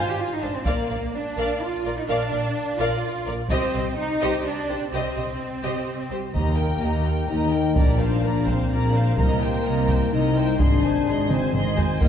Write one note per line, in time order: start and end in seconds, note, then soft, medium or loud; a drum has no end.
0.00 0.17 C5 soft
0.00 0.17 F5 soft
0.00 0.17 G#5 soft
0.07 0.19 G4 soft
0.19 0.30 F4 soft
0.32 0.43 D#4 soft
0.42 0.50 G#1 soft
0.42 0.54 D4 soft
0.42 0.51 C5 soft
0.42 0.51 F5 soft
0.55 0.66 C4 soft
0.65 0.74 A#1 soft
0.65 1.12 A#3 medium
0.65 0.88 A#4 soft
0.65 0.87 D5 soft
0.65 0.87 F5 soft
0.65 taiko soft
0.89 0.98 A#1 soft
0.89 0.99 A#4 soft
0.89 0.97 D5 soft
0.89 0.98 F5 soft
1.13 1.61 D4 medium
1.37 1.45 A#1 soft
1.37 1.59 A#4 soft
1.37 1.59 D5 soft
1.37 1.59 F5 soft
1.60 1.96 F4 medium
1.85 1.93 A#1 soft
1.85 1.93 A#4 soft
1.85 1.94 A#4 soft
1.85 1.93 D5 soft
1.97 2.08 D#4 medium
2.08 2.16 A#1 medium
2.08 2.77 D4 medium
2.08 2.30 A#4 soft
2.08 2.31 D5 soft
2.08 2.30 F5 medium
2.31 2.39 A#1 soft
2.31 2.40 A#4 soft
2.31 2.41 D5 soft
2.31 2.40 F5 soft
2.79 2.87 A#1 medium
2.79 3.26 F4 medium
2.79 3.01 A#4 medium
2.79 3.01 D5 medium
2.79 3.01 F5 soft
3.26 3.34 A#1 soft
3.26 3.34 A#4 soft
3.26 3.35 D5 soft
3.50 3.58 C2 medium
3.50 3.94 C4 medium
3.50 3.72 G4 medium
3.50 3.72 C5 medium
3.50 3.72 D#5 medium
3.50 taiko soft
3.74 3.82 C2 soft
3.74 3.82 G4 soft
3.74 3.82 C5 soft
3.74 3.83 D#5 soft
3.97 4.45 D#4 medium
4.21 4.30 C2 medium
4.21 4.43 G4 medium
4.21 4.44 C5 medium
4.21 4.43 D#5 medium
4.45 4.91 D4 medium
4.69 4.77 C2 soft
4.69 4.77 G4 soft
4.69 4.78 G4 soft
4.69 4.77 C5 soft
4.92 5.00 C2 medium
4.92 6.09 C4 medium
4.92 5.14 G4 soft
4.92 5.15 C5 soft
4.92 5.15 D#5 medium
5.16 5.24 C2 soft
5.16 5.24 G4 soft
5.16 5.24 C5 soft
5.16 5.25 D#5 soft
5.63 5.71 C2 soft
5.63 5.85 G4 soft
5.63 5.85 C5 soft
5.63 5.85 D#5 soft
6.11 6.19 C2 soft
6.11 6.19 G4 soft
6.11 6.20 G4 soft
6.11 6.19 C5 soft
6.33 6.76 D#2 soft
6.33 6.76 D#2 medium
6.33 7.24 A#3 medium
6.33 6.56 G4 soft
6.33 6.56 D#5 soft
6.33 6.57 A#5 soft
6.33 taiko soft
6.57 6.82 A#4 soft
6.57 6.81 G5 soft
6.57 6.82 G5 soft
6.81 7.23 D#2 soft
6.81 7.06 G4 soft
6.81 7.06 D#5 soft
6.81 7.05 A#5 soft
7.06 7.29 A#4 soft
7.06 7.29 G5 soft
7.29 7.71 D#2 soft
7.29 7.75 D#4 medium
7.29 7.51 G4 soft
7.29 7.52 D#5 soft
7.29 7.51 A#5 soft
7.52 7.76 A#4 soft
7.52 7.76 G5 soft
7.52 7.77 G5 soft
7.76 8.18 A#1 soft
7.76 8.18 A#2 medium
7.76 8.47 D4 medium
7.76 7.99 A#4 soft
7.76 7.99 D5 soft
7.76 7.98 A#5 soft
7.76 taiko medium
8.00 8.24 A#4 soft
8.00 8.24 C5 soft
8.00 8.24 F5 soft
8.23 8.65 A#1 soft
8.23 8.66 A#1 soft
8.23 8.66 A#2 soft
8.23 8.48 A#4 soft
8.23 8.48 D5 soft
8.23 8.47 A#5 soft
8.47 8.95 C4 medium
8.47 8.71 A#4 soft
8.47 8.71 C5 soft
8.47 8.71 F5 soft
8.47 taiko medium
8.70 9.13 A#1 medium
8.70 9.12 A#2 soft
8.70 8.93 A#4 soft
8.70 8.93 D5 soft
8.70 8.93 A#5 soft
8.95 9.18 A#4 soft
8.95 9.19 C5 soft
8.95 9.18 F5 soft
9.17 9.60 C2 medium
9.17 9.60 C2 soft
9.17 9.60 C3 medium
9.17 10.09 A#3 medium
9.17 9.40 A#4 soft
9.17 9.41 D#5 soft
9.17 9.40 A#5 soft
9.17 taiko medium
9.42 9.66 A#4 soft
9.42 9.66 C5 soft
9.42 9.66 G5 soft
9.65 10.07 C2 soft
9.65 10.07 C2 medium
9.65 10.07 C3 soft
9.65 9.89 A#4 soft
9.65 9.90 D#5 soft
9.65 9.89 A#5 soft
9.89 10.13 A#4 soft
9.89 10.13 C5 soft
9.89 10.14 G5 soft
9.89 taiko medium
10.12 10.54 C2 medium
10.12 10.55 C2 medium
10.12 10.55 C3 soft
10.12 10.60 D#4 medium
10.12 10.35 A#4 soft
10.12 10.35 D#5 soft
10.12 10.35 A#5 soft
10.37 10.61 A#4 soft
10.37 10.61 C5 soft
10.37 10.61 G5 soft
10.59 11.02 G#1 medium
10.59 11.02 G#2 medium
10.59 11.29 D4 medium
10.59 10.82 G#4 soft
10.59 10.83 D#5 soft
10.59 10.83 C6 soft
10.59 taiko medium
10.84 11.08 C5 soft
10.84 11.08 G#5 soft
11.07 11.49 G#1 medium
11.07 11.49 G#2 medium
11.07 11.31 G#4 soft
11.07 11.32 D#5 soft
11.07 11.31 C6 soft
11.30 11.78 C4 medium
11.30 11.55 C5 soft
11.30 11.56 C5 soft
11.30 11.55 G#5 soft
11.30 taiko mid medium
11.54 11.96 G#1 medium
11.54 11.97 G#1 medium
11.54 11.97 G#2 medium
11.54 11.77 G#4 soft
11.54 11.77 D#5 soft
11.54 11.77 C6 soft
11.54 taiko mid medium
11.78 12.02 C5 soft
11.78 12.03 C5 soft
11.78 12.03 G#5 soft
11.78 taiko low medium
12.00 12.08 D#2 medium
12.00 12.08 A#3 medium
12.00 12.08 A#4 medium
12.00 12.08 D#5 medium
12.00 12.08 G5 medium
12.00 taiko medium